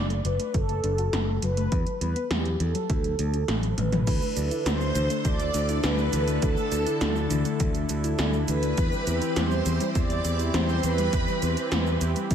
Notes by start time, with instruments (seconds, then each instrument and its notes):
Already playing: picked electric bass F#1, analog polysynth D5
0.10 synth arpeggio sound A3, closed hi-hat
0.25 picked electric bass F#1, synth arpeggio sound F#3, analog polysynth B4, closed hi-hat
0.39 synth arpeggio sound A3, closed hi-hat
0.54 picked electric bass F#1, synth arpeggio sound F#3, analog polysynth A4, kick, closed hi-hat
0.69 synth arpeggio sound A3, closed hi-hat
0.84 picked electric bass F#1, synth arpeggio sound D4, closed hi-hat
0.98 synth arpeggio sound F#4, closed hi-hat
1.13 picked electric bass F#1, synth arpeggio sound D4, snare, closed hi-hat
1.28 synth arpeggio sound A3
1.42 picked electric bass F#1, synth arpeggio sound F#3, analog polysynth B4, closed hi-hat
1.57 synth arpeggio sound A3, closed hi-hat
1.72 picked electric bass E2, synth arpeggio sound E3, kick, closed hi-hat
1.86 synth arpeggio sound F#3, closed hi-hat
2.01 picked electric bass E2, synth arpeggio sound G3, analog polysynth B4, closed hi-hat
2.16 synth arpeggio sound B3, closed hi-hat
2.31 picked electric bass E2, synth arpeggio sound G3, analog polysynth G4, snare, closed hi-hat
2.45 synth arpeggio sound F#3, closed hi-hat
2.60 picked electric bass E2, synth arpeggio sound E3, analog polysynth A4, closed hi-hat
2.74 synth arpeggio sound F#3, closed hi-hat
2.89 picked electric bass D2, synth arpeggio sound E3, kick, closed hi-hat
3.04 synth arpeggio sound F#3, closed hi-hat
3.19 picked electric bass D2, synth arpeggio sound A3, closed hi-hat
3.33 synth arpeggio sound D4, closed hi-hat
3.48 picked electric bass A1, synth arpeggio sound A3, snare, closed hi-hat
3.63 synth arpeggio sound F#3, closed hi-hat
3.71 analog polysynth C5
3.78 picked electric bass A1, synth arpeggio sound E3, analog polysynth B4, closed hi-hat, high tom
3.92 synth arpeggio sound F#3, closed hi-hat, mid tom
4.07 picked electric bass D2, analog synth pad D3 D4 E4 A4, synth arpeggio sound E3, kick, closed hi-hat, crash, cabasa
4.22 synth arpeggio sound A3, cabasa
4.37 picked electric bass D2, synth arpeggio sound D4, closed hi-hat, cabasa
4.51 synth arpeggio sound E4, closed hi-hat, cabasa
4.66 picked electric bass D2, synth arpeggio sound D4, analog polysynth C5, string machine C5, snare, closed hi-hat, cabasa
4.81 synth arpeggio sound A3, cabasa
4.95 picked electric bass D2, synth arpeggio sound E3, closed hi-hat, cabasa
5.10 synth arpeggio sound A3, closed hi-hat, cabasa
5.25 picked electric bass D2, synth arpeggio sound E3, string machine D5, analog polysynth D5, kick, closed hi-hat, cabasa
5.40 synth arpeggio sound A3, closed hi-hat, cabasa
5.54 picked electric bass D2, synth arpeggio sound D4, closed hi-hat, cabasa
5.69 synth arpeggio sound E4, closed hi-hat, cabasa
5.83 picked electric bass D2, synth arpeggio sound D4, string machine B4, analog polysynth B4, snare, closed hi-hat, cabasa
5.98 synth arpeggio sound A3, cabasa
6.13 picked electric bass D2, synth arpeggio sound E3, closed hi-hat, cabasa
6.28 synth arpeggio sound A3, closed hi-hat, cabasa
6.42 picked electric bass D2, synth arpeggio sound E3, analog polysynth A4, string machine A4, kick, closed hi-hat, cabasa
6.57 synth arpeggio sound A3, cabasa
6.72 picked electric bass D2, synth arpeggio sound D4, closed hi-hat, cabasa
6.87 synth arpeggio sound E4, closed hi-hat, cabasa
7.01 picked electric bass D2, synth arpeggio sound D4, snare, closed hi-hat, cabasa
7.16 synth arpeggio sound A3, cabasa
7.30 picked electric bass D2, synth arpeggio sound E3, closed hi-hat, cabasa
7.45 synth arpeggio sound A3, closed hi-hat, cabasa
7.60 picked electric bass D2, synth arpeggio sound E3, kick, closed hi-hat, cabasa
7.75 synth arpeggio sound A3, closed hi-hat, cabasa
7.89 picked electric bass D2, synth arpeggio sound D4, closed hi-hat, cabasa
8.04 synth arpeggio sound E4, closed hi-hat, cabasa
8.19 picked electric bass D2, synth arpeggio sound D4, snare, closed hi-hat, cabasa
8.33 synth arpeggio sound A3, cabasa
8.48 picked electric bass D2, synth arpeggio sound E3, analog polysynth B4, string machine B4, closed hi-hat, cabasa
8.63 synth arpeggio sound A3, closed hi-hat, cabasa
8.77 picked electric bass E2, synth arpeggio sound E3, analog synth pad E3 C4 G4, kick, closed hi-hat, cabasa
8.92 synth arpeggio sound G3, cabasa
9.07 picked electric bass E2, synth arpeggio sound C4, closed hi-hat, cabasa
9.22 synth arpeggio sound E4, closed hi-hat, cabasa
9.36 picked electric bass E2, synth arpeggio sound C4, string machine C5, analog polysynth C5, snare, closed hi-hat, cabasa
9.51 synth arpeggio sound G3, cabasa
9.66 picked electric bass E2, synth arpeggio sound E3, closed hi-hat, cabasa
9.81 synth arpeggio sound G3, closed hi-hat, cabasa
9.88 analog polysynth E5, string machine E5
9.95 picked electric bass E2, synth arpeggio sound E3, analog polysynth D5, string machine D5, kick, closed hi-hat, cabasa
10.10 synth arpeggio sound G3, closed hi-hat, cabasa
10.25 picked electric bass E2, synth arpeggio sound C4, closed hi-hat, cabasa
10.39 synth arpeggio sound E4, closed hi-hat, cabasa
10.54 picked electric bass E2, synth arpeggio sound C4, analog polysynth C5, string machine C5, snare, closed hi-hat, cabasa
10.69 synth arpeggio sound G3, cabasa
10.83 picked electric bass E2, synth arpeggio sound E3, analog polysynth B4, string machine B4, closed hi-hat, cabasa
10.98 synth arpeggio sound G3, closed hi-hat, cabasa
11.13 picked electric bass E2, synth arpeggio sound E3, kick, closed hi-hat, cabasa
11.28 synth arpeggio sound G3, cabasa
11.42 picked electric bass E2, synth arpeggio sound C4, closed hi-hat, cabasa
11.57 synth arpeggio sound E4, closed hi-hat, cabasa
11.72 picked electric bass E2, synth arpeggio sound C4, snare, closed hi-hat, cabasa
11.86 synth arpeggio sound G3, cabasa
12.01 picked electric bass E2, synth arpeggio sound E3, closed hi-hat, cabasa
12.16 synth arpeggio sound G3, closed hi-hat, cabasa
12.31 picked electric bass E2, synth arpeggio sound E3, kick, closed hi-hat, cabasa